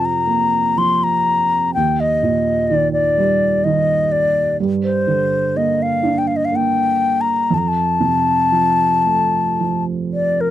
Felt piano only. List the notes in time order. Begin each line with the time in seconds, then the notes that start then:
Already playing: F2 C3 F3
0.26 A#3
0.77 F3
1.76 D#2
2.23 A#2
2.70 D#3
3.18 G3
3.65 D#3
4.60 G2
5.07 D3
5.56 A#3
6.03 D4
6.52 A#3
7.50 F2
8.00 C3
8.52 F3
9.05 A3
9.60 F3